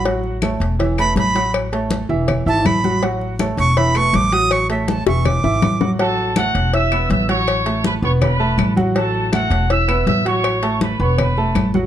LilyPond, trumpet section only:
\new Staff \with { instrumentName = "Trumpet section" } { \time 4/4 \key a \major \tempo 4 = 162 r1 | r1 | r1 | r1 |
<a' a''>4 <fis' fis''>4 <e'' e'''>4 <e'' e'''>8 <cis'' cis'''>8~ | <cis'' cis'''>4 <b' b''>8 <cis'' cis'''>8 <b' b''>4. r8 | <a' a''>4 <fis' fis''>4 <e'' e'''>4 <e'' e'''>8 <cis'' cis'''>8~ | <cis'' cis'''>4 <b' b''>8 <cis'' cis'''>8 <b' b''>4. r8 | }